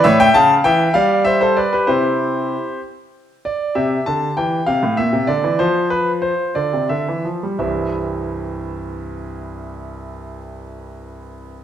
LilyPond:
<<
  \new Staff \with { instrumentName = "Grand piano" } { \time 6/8 \key c \major \tempo 4. = 63 << { <cis'' e''>16 <e'' g''>16 <f'' a''>8 <e'' g''>8 <d'' f''>8 <c'' e''>16 <a' c''>16 <b' d''>16 <g' b'>16 | <g' c''>4. r4 d''8 | e''8 a''8 g''8 f''8 e''8 d''8 | c''8 b'8 c''8 d''8 e''8 r8 |
<c, g, e g c' e' e''>2.~ | <c, g, e g c' e' e''>2. | } \\ { r2. | r2. | g'2. | f'2. |
r2. | r2. | } >> }
  \new Staff \with { instrumentName = "Grand piano" } { \clef bass \time 6/8 \key c \major a,8 cis8 e8 g4. | <c e'>4. r4. | c8 d8 e8 c16 a,16 bes,16 c16 d16 e16 | f4. d16 c16 d16 e16 f16 g16 |
r2. | r2. | }
>>